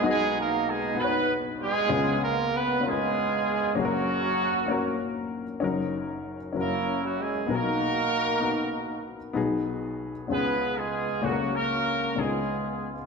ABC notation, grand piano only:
X:1
M:6/8
L:1/8
Q:3/8=64
K:F#
V:1 name="Grand piano"
[B,DFd]2 z [B,DFBc]2 z | [B,CEG]2 z [B,CEAB]2 z | [A,CFGA]2 z [A,CFA]2 z | [CDFA]2 z [C=EFA]2 z |
[B,DFA]2 z [B,DFA]2 z | [B,DFG]2 z [B,CEG]2 z | [A,CF=A^A]2 z [B,CDEG]2 z |]
V:2 name="Grand piano" clef=bass
[B,,,B,,]6 | [C,,C,]6 | [F,,,F,,]6 | [F,,,F,,]3 [F,,,F,,]3 |
[B,,,B,,]6 | [B,,,B,,]3 [C,,C,]3 | [C,,C,]3 [C,,C,]3 |]